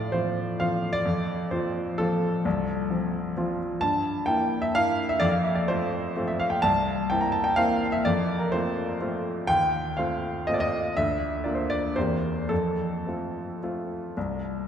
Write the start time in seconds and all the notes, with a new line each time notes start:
Already playing: A2 D5
0.12 F3 C4 F4 C5
0.60 F3 C4 F4 F5
0.93 D5
1.05 F2
1.51 F3 C4 F4 C5
1.98 F3 C4 F4 A4
2.45 C2
2.90 F3 C4 F4
3.37 F3 C4 F4
3.81 G2 A5
4.26 A#3 E4 G5
4.62 E5
4.75 A#3 E4 F5
5.09 E5
5.20 F2 D5
5.31 F5
5.44 E5
5.55 D5
5.68 A3 C4 F4 C5
6.16 A3 C4 F4
6.28 E5
6.40 F5
6.50 G5
6.62 C2 A5
7.10 A#3 C4 E4 G5
7.21 A#5
7.32 A5
7.44 G5
7.56 A#3 C4 E4 F5
7.92 E5
8.05 F2 D5
8.39 A#4
8.52 A3 C4 F4 C5
9.01 A3 C4 F4
9.47 D#2 G5
9.97 A3 C4 F4 F5
10.47 A3 C4 F4 D#5
10.54 D5
10.60 D#5
10.97 D2 E5
11.44 A#3 D4 F4 D5
11.55 C5
11.70 D5
11.96 E2 A#3 C4 G4 C5
12.49 F2 A4
13.07 A3 C4 F4
13.63 A3 C4 F4
14.17 C2